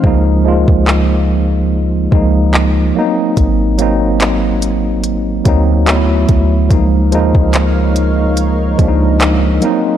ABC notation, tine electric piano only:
X:1
M:4/4
L:1/8
Q:"Swing 16ths" 1/4=72
K:Db
V:1 name="Tine electric piano"
[F,A,B,E] [F,A,B,F]3 z [F,A,B,E]2 [G,B,_C=CE]- | [G,B,_C=CE] [G,B,CE]3 z [G,B,CE] [^F,=A,=B,E=E]2 | [F,A,B,E] [F,A,B,E]3 z [F,A,B,=DE]2 [G,B,CE] |]